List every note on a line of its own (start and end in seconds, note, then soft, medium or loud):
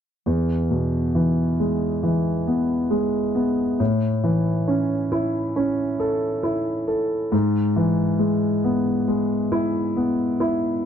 0.26 3.76 E2 soft
0.71 2.43 B2 soft
1.15 2.02 E3 soft
1.60 2.89 G#3 soft
2.03 3.76 E3 soft
2.47 3.33 B3 soft
2.90 3.77 G#3 soft
3.35 3.78 B3 soft
3.80 7.29 A2 soft
4.24 5.96 E3 soft
4.68 5.55 C#4 soft
5.12 6.42 E4 soft
5.56 7.29 C#4 soft
6.00 6.86 A4 soft
6.43 7.30 E4 soft
6.88 7.31 A4 soft
7.32 10.81 G#2 soft
7.76 9.49 E3 soft
8.19 9.06 G#3 soft
8.64 9.95 B3 soft
9.08 10.81 G#3 soft
9.52 10.39 E4 soft
9.97 10.83 B3 soft
10.40 10.84 E4 soft